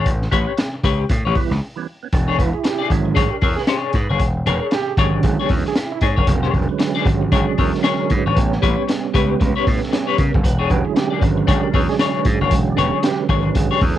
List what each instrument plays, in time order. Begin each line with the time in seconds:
0.06 slap bass A1, kick, closed hi-hat
0.22 snare
0.31 slap bass A1, tonewheel organ B3 C#4, clean electric guitar G4 B4 C#5, kick, closed hi-hat
0.47 tonewheel organ B3 C#4
0.57 tonewheel organ B3 C#4, muted clean electric guitar stroke, snare, closed hi-hat
0.74 muted clean electric guitar stroke
0.83 slap bass C#2, clean electric guitar G4 B4 C#5, kick, closed hi-hat
1.00 muted clean electric guitar stroke
1.09 slap bass A2, tonewheel organ B3 C#4, muted clean electric guitar stroke, kick, closed hi-hat
1.25 slap bass A1, clean electric guitar G4 B4 C#5
1.35 tonewheel organ E3 G3 B3 E4, muted clean electric guitar stroke, kick, open hi-hat
1.50 slap bass C#2, muted clean electric guitar stroke, snare
1.76 tonewheel organ E3 G3 B3 C#4
2.03 tonewheel organ B3 C#4
2.13 slap bass E1, tonewheel organ D4, muted clean electric guitar stroke, kick, closed hi-hat
2.28 clean electric guitar D4 G#4 C#5
2.38 slap bass E1, tonewheel organ E4, trombone B4, muted clean electric guitar stroke, kick, closed hi-hat
2.53 trombone G#4, muted clean electric guitar stroke
2.62 trombone G4, muted clean electric guitar stroke, snare, closed hi-hat
2.79 clean electric guitar D4 G#4 D5
2.90 slap bass G#1, tonewheel organ D3 F#3 G#3 C#4 E4, muted clean electric guitar stroke, kick, closed hi-hat
3.06 muted clean electric guitar stroke
3.15 slap bass G#1, clean electric guitar D4 G#4 C#5, trombone G#4, tonewheel organ G#4, kick, closed hi-hat
3.30 trombone G4, tonewheel organ A#4, muted clean electric guitar stroke
3.42 slap bass E2, clean electric guitar D4 G#4 C#5, kick, open hi-hat
3.56 trombone G#4, muted clean electric guitar stroke, snare
3.60 tonewheel organ B4
3.67 clean electric guitar D4 G#4 C#5, tonewheel organ G#4, snare, closed hi-hat
3.93 slap bass G#2, tonewheel organ B4, muted clean electric guitar stroke, kick, closed hi-hat
4.10 slap bass F#1, clean electric guitar D4 G#4 C#5
4.19 slap bass E1, kick, closed hi-hat
4.46 slap bass E1, clean electric guitar D4 G#4 C#5, tonewheel organ A#4, trombone B4, closed hi-hat
4.62 trombone G#4
4.71 trombone G4, tonewheel organ G#4, muted clean electric guitar stroke, snare, closed hi-hat
4.88 muted clean electric guitar stroke
4.97 slap bass G#1, tonewheel organ D3 F#3 G#3 C#4 G4, clean electric guitar D4 G#4 C#5, kick, closed hi-hat
5.14 muted clean electric guitar stroke
5.23 slap bass G#1, tonewheel organ E4, trombone G#4, muted clean electric guitar stroke, kick, closed hi-hat
5.40 tonewheel organ B3, clean electric guitar D4 G#4 C#5, trombone G4
5.49 slap bass E2, muted clean electric guitar stroke, kick, open hi-hat
5.66 tonewheel organ D4, trombone G#4, muted clean electric guitar stroke, snare
5.76 tonewheel organ E4, muted clean electric guitar stroke, snare, closed hi-hat
5.92 trombone E4, muted clean electric guitar stroke
6.01 slap bass G#2, clean electric guitar D4 G#4 C#5, tonewheel organ G#4, kick, closed hi-hat
6.16 slap bass F#1, clean electric guitar D4 G#4 C#5, tonewheel organ A#4, kick
6.27 slap bass E1, tonewheel organ D3 F#3 G#3 C#4, muted clean electric guitar stroke, kick, closed hi-hat
6.43 clean electric guitar D4 G#4 C#5, snare
6.53 slap bass E1, muted clean electric guitar stroke, kick, closed hi-hat
6.69 tonewheel organ B4, muted clean electric guitar stroke
6.79 muted clean electric guitar stroke, snare, closed hi-hat
6.95 clean electric guitar D4 G#4 D5
7.06 slap bass G#1, tonewheel organ G4, muted clean electric guitar stroke, kick, closed hi-hat
7.21 muted clean electric guitar stroke
7.32 slap bass G#1, clean electric guitar D4 G#4 C#5, tonewheel organ G#4, kick, closed hi-hat
7.47 muted clean electric guitar stroke
7.58 slap bass E2, clean electric guitar D4 G#4 C#5, tonewheel organ A#4, kick, open hi-hat
7.72 muted clean electric guitar stroke, snare
7.83 clean electric guitar D4 G#4 C#5, snare, closed hi-hat
8.09 slap bass G#2, tonewheel organ B4, muted clean electric guitar stroke, kick, closed hi-hat
8.26 slap bass G#1, clean electric guitar D4 G#4 C#5
8.36 slap bass A1, tonewheel organ G3 B3 C#4 C#5, kick, closed hi-hat
8.52 snare
8.62 slap bass A1, clean electric guitar G4 B4 C#5, kick, closed hi-hat
8.87 muted clean electric guitar stroke, snare, closed hi-hat
9.03 muted clean electric guitar stroke
9.14 slap bass C#2, clean electric guitar G4 B4 C#5, tonewheel organ B4, kick, closed hi-hat
9.30 muted clean electric guitar stroke
9.40 slap bass C#2, muted clean electric guitar stroke, kick, closed hi-hat
9.56 clean electric guitar G4 B4 C#5, tonewheel organ C#5
9.67 slap bass A2, tonewheel organ B4, kick, open hi-hat
9.81 tonewheel organ A4, muted clean electric guitar stroke, snare
9.92 tonewheel organ C#5, muted clean electric guitar stroke, snare, closed hi-hat
10.07 clean electric guitar G4 B4 C#5, tonewheel organ B4
10.18 slap bass C#3, tonewheel organ A#4, kick, closed hi-hat
10.33 slap bass F#1, tonewheel organ A4, muted clean electric guitar stroke, kick
10.44 slap bass E1, tonewheel organ B4, muted clean electric guitar stroke, kick, closed hi-hat
10.59 clean electric guitar D4 G#4 C#5, tonewheel organ G#4
10.68 slap bass E1, tonewheel organ D3 F#3 G#3 C#4 G4 G#4, trombone B4, muted clean electric guitar stroke, kick, closed hi-hat
10.85 tonewheel organ E4, trombone G#4, muted clean electric guitar stroke
10.95 trombone G4, tonewheel organ G#4, muted clean electric guitar stroke, snare, closed hi-hat
11.11 clean electric guitar D4 G#4 D5, tonewheel organ A#4
11.22 slap bass G#1, tonewheel organ B4, muted clean electric guitar stroke, kick, closed hi-hat
11.38 muted clean electric guitar stroke
11.47 slap bass G#1, clean electric guitar D4 G#4 C#5, trombone G#4, tonewheel organ D5, kick, closed hi-hat
11.63 trombone G4, tonewheel organ A#4, muted clean electric guitar stroke
11.73 slap bass E2, clean electric guitar D4 G#4 C#5, tonewheel organ B4, kick, open hi-hat
11.89 trombone G#4, tonewheel organ D5, muted clean electric guitar stroke, snare
11.99 clean electric guitar D4 G#4 C#5, snare, closed hi-hat
12.16 tonewheel organ B4
12.25 slap bass G#2, tonewheel organ G#4, muted clean electric guitar stroke, kick, closed hi-hat
12.41 slap bass F#1, clean electric guitar D4 G#4 C#5, tonewheel organ A#4
12.51 slap bass E1, tonewheel organ D3 F#3 G#3 C#4 B4, kick, closed hi-hat
12.69 tonewheel organ D5
12.77 slap bass E1, clean electric guitar D4 G#4 C#5, tonewheel organ G4, trombone B4, closed hi-hat
12.92 trombone G#4, tonewheel organ G#4
13.03 trombone G4, tonewheel organ B4, muted clean electric guitar stroke, snare, closed hi-hat
13.18 muted clean electric guitar stroke
13.29 slap bass G#1, clean electric guitar D4 G#4 C#5, kick, closed hi-hat
13.45 muted clean electric guitar stroke
13.55 slap bass G#1, trombone G#4, muted clean electric guitar stroke, kick, closed hi-hat
13.71 clean electric guitar D4 G#4 C#5, trombone G4
13.81 slap bass E2, tonewheel organ D3 F#3 G#3 C#4, muted clean electric guitar stroke, kick, open hi-hat